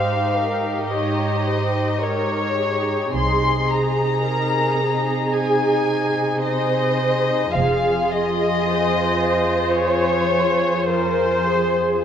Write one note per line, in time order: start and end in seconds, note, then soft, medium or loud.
0.00 3.10 G#2 soft
0.00 3.11 D#4 soft
0.00 3.15 G4 soft
0.00 0.36 C5 soft
0.00 0.92 F5 medium
0.37 0.92 A#4 soft
0.92 1.47 C#5 soft
0.92 2.00 D#5 medium
1.47 2.02 C5 soft
2.02 2.59 A#4 soft
2.02 3.14 C#5 medium
2.59 4.23 G#4 soft
3.14 4.22 C2 soft
3.14 7.51 C3 soft
3.14 7.52 D#4 soft
3.14 7.52 G#4 soft
3.14 3.70 C6 medium
3.71 5.36 A#5 medium
4.27 4.82 A#4 soft
4.83 6.46 G#4 medium
5.35 6.45 G#5 medium
6.44 7.53 C5 medium
6.44 7.53 D#5 medium
7.54 8.63 F1 soft
7.54 12.03 F2 soft
7.54 12.04 F4 soft
7.54 8.65 G#4 soft
7.54 12.03 G#4 soft
7.54 8.11 F5 medium
8.11 9.79 D#5 medium
8.68 10.89 C5 medium
9.79 10.89 C#5 medium
10.88 11.47 A#4 medium
10.88 12.04 C5 medium
11.47 12.04 G#4 soft